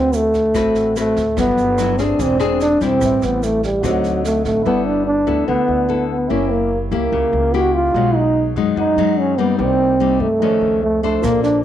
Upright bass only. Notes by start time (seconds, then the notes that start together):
Already playing: D2
0.55 A1
1.17 D2
1.37 G1
1.57 G1
2.19 E1
2.81 E1
3.01 A1
3.22 A1
3.83 D2
4.45 A1
4.66 G1
5.27 D2
5.48 D2
5.68 D2
6.30 F#1
6.91 C#2
7.12 C#2
7.33 C#2
7.94 B1
8.56 F#2
8.76 F#2
8.96 F#2
9.59 C2
10.20 G2
10.41 F2
10.61 C#2
11.23 A#1